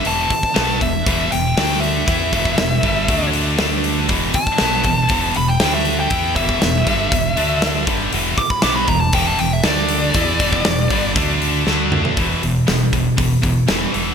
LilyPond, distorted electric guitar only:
\new Staff \with { instrumentName = "Distorted electric guitar" } { \clef bass \time 4/4 \key e \minor \tempo 4 = 119 <e, b, e>8 r8 <b, fis b>8 <e, b,>8 <e, b, e>8 <e, b,>8 <d a d'>4 | <e b e'>8 <e, b, e>8 <e, b,>8 <g, d g>8 <d a d'>4 <d a d'>4 | <e, b, e>8 r8 <b, fis b>8 <e, b,>8 <e, b, e>8 <e, b,>8 <d a d'>4 | <e b e'>8 <e, b, e>8 <e, b,>8 <g, d g>8 <e, b,>8 <d a d'>4 <g, d g>8 |
<e, b, e>8 r8 <b, fis b>8 <e, b,>8 <e, b, e>8 <e, b,>8 <d a d'>4 | <e b e'>8 <e, b, e>8 <e, b,>8 <g, d g>8 <d a d'>4 <d a d'>4 | <e, b, e>8 <e, b,>8 <e, b,>8 <e, b,>8 <e, b,>8 <e, b,>8 <e, b, e>8 <e, b, e>8 | }